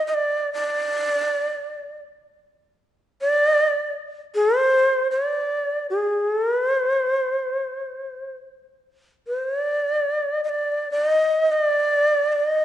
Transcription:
0.07 0.15 D#5 medium
0.14 0.53 D5 loud
0.53 2.01 D5 loud
3.21 3.94 D5 loud
4.35 4.59 G#4 loud
4.59 5.08 C5 loud
5.11 5.87 D5 medium
5.90 6.27 G#4 medium
6.27 6.41 A4 medium
6.41 6.55 A#4 medium
6.55 6.70 B4 medium
6.70 8.36 C5 medium
9.27 9.48 C5 medium
9.48 9.61 C#5 medium
9.61 10.41 D5 medium
10.44 10.51 D#5 medium
10.49 10.91 D5 medium
10.91 11.05 D5 loud
11.05 11.54 D#5 loud
11.52 12.32 D5 loud
12.32 12.46 D5 medium
12.46 12.65 D#5 medium

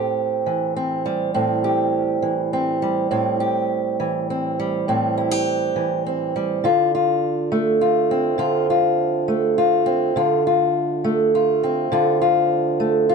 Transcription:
0.00 1.34 A2 medium
0.00 0.76 C4 medium
0.00 1.63 G4 medium
0.46 2.21 E3 medium
0.76 1.34 C4 medium
1.06 2.81 G3 medium
1.34 3.10 A2 medium
1.34 2.53 C4 medium
1.64 3.08 G4 medium
2.22 3.08 E3 medium
2.53 3.11 C4 medium
2.82 4.58 G3 medium
3.11 4.87 A2 medium
3.11 4.30 C4 medium
3.40 5.17 G4 medium
4.00 5.75 E3 medium
4.30 4.88 C4 medium
4.60 6.35 G3 medium
4.88 6.64 A2 medium
4.88 6.06 C4 medium
5.17 5.31 E4 medium
5.31 6.64 G4 soft
5.76 6.61 E3 medium
6.06 6.67 C4 medium
6.36 6.65 G3 medium
6.64 8.37 D3 medium
6.64 6.94 F4 medium
6.95 7.81 F4 medium
7.52 9.28 A3 medium
7.81 8.38 F4 medium
8.11 9.86 C4 medium
8.38 10.15 D3 medium
8.38 8.69 F4 medium
8.70 9.57 F4 medium
9.28 11.04 A3 medium
9.58 10.13 F4 medium
9.86 10.19 C4 medium
10.16 11.90 D3 medium
10.16 10.46 F4 medium
10.47 11.34 F4 medium
11.04 12.79 A3 medium
11.35 11.91 F4 medium
11.63 13.15 C4 medium
11.92 13.15 D3 medium
11.92 12.20 F4 medium
12.21 13.08 F4 medium
12.80 13.15 A3 medium
13.09 13.15 F4 medium

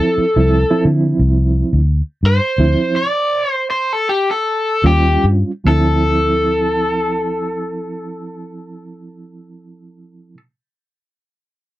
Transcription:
0.00 0.25 F3 medium
0.00 0.26 C4 medium
0.00 0.26 E4 medium
0.00 0.83 A4 loud
0.18 muted fingered electric bass stroke soft
0.36 0.63 C2 medium
0.36 0.63 F3 medium
0.36 0.63 C4 medium
0.36 0.63 E4 medium
0.70 1.79 F3 medium
0.70 1.79 C4 medium
0.70 1.79 E4 loud
0.85 1.12 D3 medium
1.19 1.62 C2 medium
1.73 2.01 D2 medium
2.23 2.39 G2 medium
2.23 3.53 C5 loud
2.58 2.74 D2 medium
2.58 3.03 F3 medium
2.58 3.03 C4 medium
2.58 3.03 E4 medium
2.96 3.53 D5 medium
3.53 3.67 C5 medium
3.70 3.93 C5 medium
3.93 4.07 A4 medium
4.09 4.28 G4 medium
4.31 4.84 A4 medium
4.83 5.16 D#2 medium
4.83 5.50 G3 medium
4.83 5.50 C#4 medium
4.83 5.51 F4 medium
4.83 5.24 G4 medium
5.24 5.42 G2 medium
5.64 10.35 D2 medium
5.64 10.34 F3 medium
5.64 10.36 C4 medium
5.64 10.37 E4 medium
5.64 10.37 A4 medium

